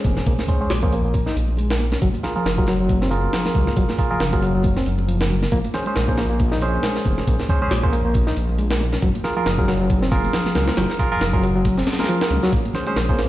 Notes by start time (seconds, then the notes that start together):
Already playing: C#4 G#4 C5
0.04 F1 A#3, kick, closed hi-hat, tambourine, muted conga, high conga
0.17 C#4, snare, tambourine
0.26 A#1 A#3, kick, closed hi-hat, tambourine
0.38 snare, muted conga, high conga
0.47 C#4 G#4 C5, kick, closed hi-hat, tambourine, low conga
0.61 A#1 G#3 C#4 G#4 C5, tambourine
0.70 A#1, snare, closed hi-hat, tambourine
0.82 A#3 C#4 G#4 C5, kick, muted conga, high conga
0.92 A#3, closed hi-hat, tambourine
1.04 A#3, tambourine
1.14 kick, closed hi-hat, tambourine, muted conga, high conga
1.26 D#4, snare
1.36 A#1, closed hi-hat, tambourine
1.48 tambourine, high conga
1.57 G#3, closed hi-hat, tambourine, muted conga
1.70 snare
1.79 A#3, closed hi-hat, tambourine, high conga
1.92 C#4, snare, tambourine, muted conga
2.01 F#1 F#3, kick, closed hi-hat, tambourine
2.14 closed hi-hat, high conga
2.23 F4 G#4 A#4, snare, closed hi-hat, tambourine, low conga
2.36 F3 F4 G#4 A#4, tambourine, muted conga
2.45 F#1, snare, closed hi-hat, tambourine
2.58 F#3 F4 G#4 A#4, kick, high conga
2.67 F#3, snare, open hi-hat, tambourine, muted conga
2.79 F#3, tambourine
2.89 kick, closed hi-hat, tambourine, high conga
3.02 C4, snare
3.11 F4 G#4 A#4, closed hi-hat, tambourine, muted conga
3.23 tambourine, high conga
3.32 F3, snare, closed hi-hat, tambourine
3.45 snare, muted conga
3.54 C#2 F#3, kick, closed hi-hat, tambourine, high conga
3.67 A#3, snare, tambourine
3.76 F#1 F#3, kick, closed hi-hat, tambourine
3.89 snare, muted conga, high conga
3.98 F4 G#4 A#4, kick, closed hi-hat, tambourine, low conga
4.11 F#1 F3 F4 G#4 A#4, tambourine
4.20 F#1, snare, closed hi-hat, tambourine, muted conga
4.33 F#3 F4 G#4 A#4, kick, high conga
4.42 F#3, closed hi-hat, tambourine
4.55 F#3, tambourine
4.63 kick, closed hi-hat, tambourine, muted conga, high conga
4.77 C4, snare
4.86 F#1, closed hi-hat, tambourine
4.98 tambourine, muted conga, high conga
5.08 F3, closed hi-hat, tambourine
5.21 snare
5.30 F#3, closed hi-hat, tambourine, high conga
5.42 A#3, snare, tambourine, muted conga
5.52 A#1 A#3, kick, closed hi-hat, tambourine, muted conga
5.64 closed hi-hat, high conga
5.74 C#4 G#4 C5, snare, closed hi-hat, tambourine, low conga
5.86 G#3 C#4 G#4 C5, tambourine, muted conga
5.96 A#1, snare, closed hi-hat, tambourine
6.08 A#3 C#4 G#4 C5, kick, high conga
6.18 A#3, snare, open hi-hat, tambourine
6.30 A#3, tambourine, muted conga
6.40 kick, closed hi-hat, tambourine, high conga
6.52 D#4, snare
6.61 C#4 G#4 C5, closed hi-hat, tambourine, muted conga
6.74 tambourine, high conga
6.83 G#3, snare, closed hi-hat, tambourine
6.96 snare
7.05 F1 A#3, kick, closed hi-hat, tambourine, muted conga, high conga
7.18 C#4, snare, tambourine
7.27 A#1 A#3, kick, closed hi-hat, tambourine
7.40 snare, muted conga, high conga
7.49 C#4 G#4 C5, kick, closed hi-hat, tambourine, low conga
7.62 A#1 G#3 C#4 G#4 C5, tambourine
7.71 A#1, snare, closed hi-hat, tambourine
7.83 A#3 C#4 G#4 C5, kick, muted conga, high conga
7.93 A#3, closed hi-hat, tambourine
8.05 A#3, tambourine
8.14 kick, closed hi-hat, tambourine, muted conga, high conga
8.27 D#4, snare
8.37 A#1, closed hi-hat, tambourine
8.49 tambourine, high conga
8.58 G#3, closed hi-hat, tambourine, muted conga
8.71 snare
8.80 A#3, closed hi-hat, tambourine, high conga
8.92 C#4, snare, tambourine, muted conga
9.02 F#1 F#3, kick, closed hi-hat, tambourine
9.15 closed hi-hat, high conga
9.24 F4 G#4 A#4, snare, closed hi-hat, tambourine, low conga
9.36 F3 F4 G#4 A#4, tambourine, muted conga
9.46 F#1, snare, closed hi-hat, tambourine
9.58 F#3 F4 G#4 A#4, kick, high conga
9.68 F#3, snare, open hi-hat, tambourine, muted conga
9.80 F#3, tambourine
9.90 kick, closed hi-hat, tambourine, high conga
10.02 C4, snare
10.11 F4 G#4 A#4, kick, closed hi-hat, tambourine, muted conga
10.24 closed hi-hat, tambourine, high conga
10.33 F3, snare, closed hi-hat, tambourine
10.46 snare, muted conga
10.55 C#2 F#3, snare, closed hi-hat, tambourine, high conga
10.68 A#3, snare, closed hi-hat, tambourine
10.77 F#1 F#3, snare, closed hi-hat, tambourine, low conga
10.89 snare, muted conga, high conga
10.99 F4 G#4 A#4, kick, closed hi-hat, tambourine, low conga
11.12 F#1 F3 F4 G#4 A#4, tambourine
11.21 F#1, snare, closed hi-hat, tambourine, muted conga
11.33 F#3 F4 G#4 A#4, kick, high conga
11.43 F#3, closed hi-hat, tambourine
11.55 F#3, tambourine
11.65 kick, closed hi-hat, tambourine, muted conga, high conga
11.78 C4, snare
11.87 snare, closed hi-hat, tambourine
11.93 snare, closed hi-hat
11.99 F4 G#4 A#4, snare, closed hi-hat, tambourine, muted conga, high conga
12.04 snare, closed hi-hat
12.09 F3, closed hi-hat, tambourine
12.21 snare
12.30 C#2 F#3, closed hi-hat, tambourine, high conga
12.43 F#3, snare, tambourine, muted conga
12.52 A#1 A#3 C#4 G#4 C5, kick, closed hi-hat, tambourine, muted conga
12.65 closed hi-hat, high conga
12.74 C#4 G#4 C5, snare, closed hi-hat, tambourine, low conga
12.86 G#3 C#4 G#4 C5, tambourine, muted conga
12.96 A#1, snare, closed hi-hat, tambourine
13.09 A#3 C#4 G#4 C5, kick, high conga
13.19 A#3, snare, open hi-hat, tambourine